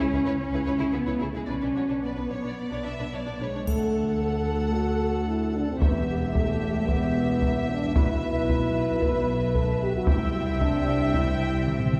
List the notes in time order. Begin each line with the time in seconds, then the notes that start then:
Already playing: C#4
0.00 C#2 G#4
0.12 C#2 E4 G#4 B4, taiko
0.26 C#2 E4 B4 C#5
0.39 C#4
0.53 C#2 E4 G#4 B4
0.66 C#2 E4 B4 C#5
0.79 C#2 E4 G#4
0.92 C#2 B3 E4 G#4 B4
1.06 C#2 E4 B4 C#5
1.20 C#2 A3 E4 G#4
1.34 C#2 G#3 E4 G#4 B4
1.46 B1 C#4 D4 D5
1.50 B4
1.61 B1 D4 B4
1.75 B1 D4 F#4 C#5
1.88 B1 D4 B4
2.01 B1 B3 D4 B4 D5
2.15 B1 D4 B4
2.29 B1 D4 C#5
2.34 C#5
2.42 B1 D4
2.47 D5
2.58 D5
2.71 B1 D4 C#5
2.83 B1 D4 D5 E5
2.99 B1 D4 B4
3.12 B1 D4 C#5 D5
3.25 B1 D4 D5
3.40 B1 G#3 D4 B4 C#5
3.54 B1 D4 C#5
3.67 D2 A3 A4 F#5, taiko, triangle
4.74 F#4
5.28 E4
5.56 D4
5.68 C4
5.80 E1 E2 B3 G4 E5, taiko
6.34 A3, taiko
6.87 B3, taiko
7.42 taiko
7.70 D4
7.95 B1 B2 E4 B4, taiko
8.50 taiko
9.02 B4, taiko
9.55 A4, taiko
9.84 G4
9.96 F#4
10.07 C2 C3 E4 E5 G5, taiko
10.61 D4, taiko
11.14 E4, taiko
11.68 taiko mid
11.80 taiko low-mid
11.93 taiko mid